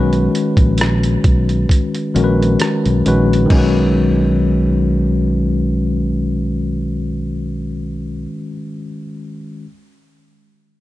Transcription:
Already playing: fingered electric bass B1, tine electric piano D#3 G#3 C#4 F#4 B4
0.13 closed hi-hat
0.35 closed hi-hat
0.57 fingered electric bass A#1, kick, closed hi-hat
0.78 cross-stick, closed hi-hat
1.03 closed hi-hat
1.24 fingered electric bass B1, kick, closed hi-hat
1.49 closed hi-hat
1.69 kick, closed hi-hat
1.95 closed hi-hat
2.14 fingered electric bass A#1, tine electric piano D#3 G#3 C#4 F#4 A#4, closed hi-hat
2.24 tine electric piano B4
2.42 closed hi-hat
2.60 cross-stick, closed hi-hat
2.86 fingered electric bass B1, closed hi-hat
3.05 fingered electric bass A#1, tine electric piano D#3 G#3 C#4 F#4 B4, closed hi-hat
3.33 closed hi-hat
3.46 tine electric piano D#3 G#3
3.50 fingered electric bass B1, tine electric piano C#4, kick, crash
3.55 tine electric piano F#4 B4

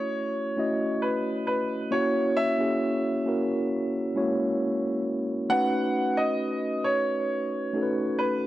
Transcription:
Already playing: tine electric piano A3 C#4 E4 F#4 C#5, grand piano C#5
0.57 tine electric piano A3 C#4 E4 F#4 D#5
1.02 grand piano B4
1.47 grand piano B4
1.91 tine electric piano A#3 C#4 E4 F#4 C#5, grand piano C#5
2.37 grand piano E5
2.58 tine electric piano A#3 C#4 E4 F#4 G#4
3.25 tine electric piano A#3 C#4 E4 F#4 A#4
4.15 tine electric piano G#3 C#4 E4 F#4 C#5
4.21 tine electric piano A#3
5.49 tine electric piano A3 C#4 D#4 F#4 B4, grand piano F#5
6.17 grand piano D#5
6.84 grand piano C#5
7.73 tine electric piano A3 C#4 D#4 F#4 A4
7.83 tine electric piano B4
8.19 grand piano B4

